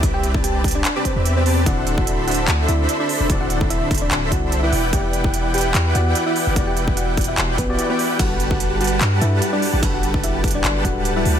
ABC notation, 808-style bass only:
X:1
M:4/4
L:1/16
Q:"Swing 16ths" 1/4=147
K:Em
V:1 name="808-style bass" clef=bass
C,,8 z3 E,,4- E,, | D,,,8 D,,2 D,,2 z3 E,,, | D,,,8 D,,,2 C,,4 E,,,2 | E,,,8 E,,2 E,,2 z3 F,,, |
E,,,8 E,,,2 A,,,2 z4 | G,,,8 G,,2 G,,2 z3 A,,, | G,,,8 G,,,2 D,,,4 D,,2 |]